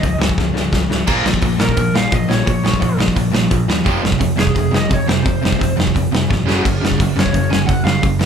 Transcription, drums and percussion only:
0.03 kick, open hi-hat
0.22 snare
0.29 kick
0.38 kick, snare
0.56 snare
0.73 kick, snare
0.91 snare
1.07 kick, crash
1.26 snare
1.34 kick
1.42 kick, open hi-hat
1.60 snare
1.69 kick
1.77 kick, open hi-hat
1.96 snare
2.12 kick, open hi-hat
2.31 snare
2.47 kick, open hi-hat
2.66 snare
2.74 kick
2.82 kick, open hi-hat
3.00 snare
3.08 kick
3.16 kick, open hi-hat
3.35 snare
3.51 kick, open hi-hat
3.70 snare
3.86 kick, open hi-hat
4.05 snare
4.12 kick
4.21 kick, open hi-hat
4.39 snare
4.47 kick
4.56 kick, open hi-hat
4.74 snare
4.91 kick, open hi-hat
5.09 snare
5.26 kick, open hi-hat
5.45 snare
5.52 kick
5.61 kick, open hi-hat
5.80 snare
5.87 kick
5.96 kick, open hi-hat
6.15 snare
6.31 kick, snare
6.49 snare
6.65 kick, crash
6.85 snare
6.91 kick
7.00 kick, open hi-hat
7.19 snare
7.26 kick
7.34 kick, open hi-hat
7.53 snare
7.69 kick, open hi-hat
7.87 snare
8.03 kick, open hi-hat
8.21 snare

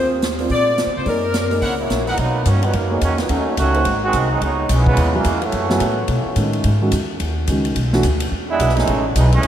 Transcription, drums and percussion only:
0.22 snare, closed hi-hat
0.39 open hi-hat
0.50 kick, open hi-hat
0.78 snare, closed hi-hat
1.06 kick, open hi-hat
1.34 snare, closed hi-hat
1.51 open hi-hat
1.62 kick, open hi-hat
1.90 snare, closed hi-hat
2.07 open hi-hat
2.17 kick, ride
2.46 kick, hi-hat pedal, ride
2.62 ride
2.73 kick, ride
3.01 kick, hi-hat pedal, ride
3.18 snare, ride
3.29 kick, ride
3.57 kick, hi-hat pedal, ride
3.74 ride
3.85 kick, ride
4.13 kick, hi-hat pedal, ride
4.41 kick, ride
4.69 kick, hi-hat pedal, ride
4.86 kick
4.97 kick, ride
5.24 kick, hi-hat pedal, ride
5.42 ride
5.52 kick, ride
5.70 snare
5.80 kick, hi-hat pedal, ride
6.08 kick, ride
6.36 kick, hi-hat pedal, ride
6.53 ride
6.64 kick, ride
6.92 kick, hi-hat pedal, ride
7.20 kick, ride
7.47 kick, hi-hat pedal, ride
7.65 ride
7.76 kick, ride
7.93 snare
8.03 kick, hi-hat pedal, ride
8.20 ride
8.32 kick
8.60 kick, hi-hat pedal, ride
8.69 snare
8.77 snare, ride
8.87 kick, ride
9.16 kick, hi-hat pedal, ride
9.32 ride
9.43 kick, ride

